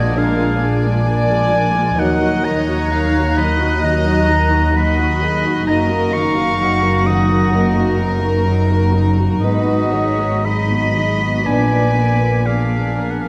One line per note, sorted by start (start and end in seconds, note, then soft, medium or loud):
0.00 1.98 A#1 medium
0.00 0.14 A#2 medium
0.00 1.98 A#2 medium
0.00 1.04 F3 soft
0.00 0.15 G#3 soft
0.00 0.59 G#3 soft
0.00 1.93 D4 medium
0.00 0.15 F4 soft
0.00 0.15 F#4 medium
0.00 0.13 D5 medium
0.00 0.20 D#5 medium
0.00 1.71 G#6 medium
0.15 2.01 A#2 medium
0.15 0.49 G#3 medium
0.15 0.36 A#3 medium
0.15 0.36 D4 medium
0.15 0.49 D4 medium
0.15 1.05 G#4 medium
0.15 0.60 A#4 medium
0.15 0.80 F5 medium
0.39 0.60 G#3 medium
0.39 0.60 F4 medium
0.61 1.50 G#3 soft
0.61 0.83 A#3 medium
0.61 0.83 D4 medium
0.61 1.96 D5 medium
0.85 1.06 G#3 medium
0.85 1.06 F4 medium
1.05 2.01 F3 medium
1.05 1.27 A#3 medium
1.05 1.27 D4 medium
1.05 1.98 D5 medium
1.05 2.01 G#5 loud
1.29 1.51 G#3 medium
1.29 1.52 F4 medium
1.51 2.01 G#3 soft
1.51 1.74 A#3 medium
1.51 1.74 D4 medium
1.74 1.98 G#3 medium
1.74 1.97 F4 medium
1.96 5.64 D#2 medium
1.96 5.65 D#2 medium
1.96 3.81 D#3 medium
1.96 2.19 D#3 medium
1.96 2.33 F#3 medium
1.96 5.36 D#4 medium
1.96 2.33 D#4 medium
1.96 2.19 D#4 medium
1.96 2.44 A#4 medium
1.96 2.90 D#5 medium
1.96 2.46 F#5 medium
1.96 5.70 F#6 medium
2.22 2.45 F#3 medium
2.22 2.44 F#4 medium
2.44 2.68 D#3 medium
2.44 3.36 F#3 medium
2.44 2.68 D#4 medium
2.44 3.36 C#5 medium
2.44 3.39 A#5 loud
2.69 2.91 F#3 medium
2.69 2.91 F#4 medium
2.91 3.13 D#3 medium
2.91 4.26 D#4 medium
2.91 3.13 D#4 medium
2.91 3.37 F5 medium
3.15 3.37 F#3 medium
3.15 3.38 F#4 medium
3.37 3.60 D#3 medium
3.37 4.73 F#3 medium
3.37 3.60 D#4 medium
3.37 4.75 D#5 medium
3.37 3.82 D#5 medium
3.37 3.85 B5 medium
3.61 3.83 F#3 medium
3.61 3.83 F#4 medium
3.82 5.71 D#3 medium
3.82 4.04 D#3 medium
3.82 4.17 F#3 medium
3.82 4.17 D#4 medium
3.82 4.04 D#4 medium
3.82 4.73 D#5 medium
3.82 4.78 A#5 loud
4.06 4.28 F#3 medium
4.06 4.28 F#4 medium
4.27 4.51 D#3 medium
4.27 5.20 D#4 soft
4.27 4.51 D#4 medium
4.51 4.74 F#3 medium
4.51 4.74 F#4 medium
4.74 4.96 D#3 medium
4.74 6.59 F#3 medium
4.74 4.97 D#4 medium
4.74 5.21 F#4 medium
4.74 5.66 D#5 medium
4.74 5.66 B5 loud
5.00 5.22 F#3 medium
5.00 5.22 F#4 medium
5.21 5.45 D#3 medium
5.21 9.11 D#4 medium
5.21 5.45 D#4 medium
5.21 5.68 G#4 medium
5.45 5.67 F#3 medium
5.45 5.68 F#4 medium
5.67 9.38 F#1 medium
5.67 7.53 F#2 medium
5.67 9.38 F#2 medium
5.67 5.89 F#3 medium
5.67 6.03 A#3 medium
5.67 5.89 D#4 medium
5.67 12.13 D#4 medium
5.67 6.04 D#4 medium
5.67 6.61 A#4 medium
5.67 6.13 D#5 medium
5.67 6.15 A#5 medium
5.67 9.14 A#6 medium
5.90 6.13 A#3 medium
5.90 6.13 F#4 medium
6.13 7.06 D#3 medium
6.13 6.37 F#3 medium
6.13 6.37 D#4 medium
6.13 7.07 F5 medium
6.13 7.08 C#6 loud
6.36 6.60 A#3 medium
6.36 6.60 F#4 medium
6.60 6.82 F#3 medium
6.60 7.98 F#3 medium
6.60 6.82 D#4 medium
6.60 7.53 F#4 medium
6.83 7.07 A#3 medium
6.83 7.07 F#4 medium
7.06 8.45 D#3 soft
7.06 7.30 F#3 medium
7.06 7.30 D#4 medium
7.06 8.00 F#5 medium
7.06 8.00 D#6 medium
7.29 7.53 A#3 soft
7.29 7.53 F#4 medium
7.53 9.46 F#2 medium
7.53 7.75 F#3 medium
7.53 7.89 A#3 medium
7.53 7.75 D#4 medium
7.53 7.89 D#4 medium
7.53 9.43 A#4 medium
7.76 8.00 A#3 medium
7.76 8.00 F#4 medium
7.99 8.92 F#3 medium
7.99 8.24 F#3 medium
7.99 8.23 D#4 medium
8.22 8.47 A#3 medium
8.22 8.46 F#4 medium
8.47 9.46 D#3 medium
8.47 8.69 F#3 medium
8.47 8.69 D#4 medium
8.70 8.94 A#3 medium
8.70 8.94 F#4 medium
8.93 10.44 F#3 soft
8.93 9.18 F#3 medium
8.93 9.18 D#4 medium
9.17 9.42 A#3 medium
9.17 9.42 F#4 medium
9.41 11.45 G#1 medium
9.41 11.49 G#2 medium
9.41 11.45 G#2 medium
9.41 9.65 G#3 medium
9.41 9.83 B3 medium
9.41 9.65 D#4 medium
9.41 9.83 D#4 medium
9.41 10.43 F#4 medium
9.41 9.94 B4 medium
9.41 10.47 D#5 medium
9.41 13.28 B6 medium
9.66 9.93 B3 medium
9.66 9.93 F#4 medium
9.92 10.95 D#3 soft
9.92 10.20 G#3 medium
9.92 10.20 D#4 medium
9.92 10.46 C#5 medium
10.19 10.46 B3 medium
10.19 10.46 F#4 soft
10.45 11.49 F#3 soft
10.45 10.70 G#3 medium
10.45 10.70 D#4 medium
10.45 11.46 D#5 medium
10.45 11.44 D#5 medium
10.45 11.48 B5 loud
10.72 10.97 B3 soft
10.72 10.96 F#4 soft
10.96 11.49 D#3 soft
10.96 11.21 G#3 soft
10.96 11.21 D#4 medium
11.21 11.44 B3 soft
11.21 11.45 F#4 soft
11.45 13.28 A#1 medium
11.45 13.28 A#2 medium
11.45 11.68 B3 soft
11.45 11.85 B3 medium
11.45 11.68 D4 medium
11.45 11.85 D4 medium
11.45 12.46 B4 medium
11.45 12.45 D5 medium
11.45 12.48 G#5 medium
11.69 11.95 A#3 soft
11.69 11.94 B3 soft
11.95 12.97 A#3 soft
11.95 12.19 B3 soft
11.95 12.20 D4 soft
12.21 12.46 A#3 soft
12.21 12.45 B3 soft
12.46 13.28 F3 soft
12.46 12.70 B3 soft
12.46 12.70 D4 soft
12.46 13.28 D4 soft
12.46 13.28 G#4 medium
12.46 12.97 D5 medium
12.46 13.12 F5 medium
12.73 12.99 A#3 soft
12.73 12.98 B3 soft
12.99 13.28 A#3 soft
12.99 13.25 B3 soft
12.99 13.25 D4 soft
12.99 13.28 A#4 soft
13.11 13.23 F#5 medium
13.22 13.28 F5 medium